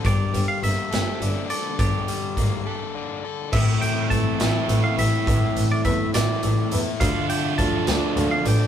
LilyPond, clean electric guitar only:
\new Staff \with { instrumentName = "Clean electric guitar" } { \time 6/8 \key a \phrygian \tempo 4. = 69 d''8. f''16 e''4. d''8 | d''2 r4 | e''8 g''8 a''4~ a''16 f''16 e''8~ | e''8. d''16 e''8 d''4 r8 |
f''8 g''8 a''4~ a''16 f''16 g''8 | }